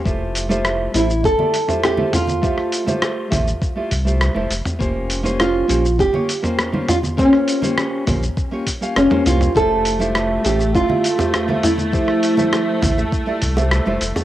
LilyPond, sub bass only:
\new Staff \with { instrumentName = "Sub bass" } { \clef bass \time 4/4 \key f \major \tempo 4 = 101 f,,4. a,,8 f,,16 r4. r16 | r4. a,,16 r8. c,8. f,,16 f,,16 r16 | f,,4. bes,,8 f,,16 r4. r16 | r4. bes,,16 r4 r16 f,,16 r16 c,16 r16 |
f,,4. a,,8 f,,16 r4. r16 | r4. a,,16 r8. c,8. f,,16 f,,16 r16 | }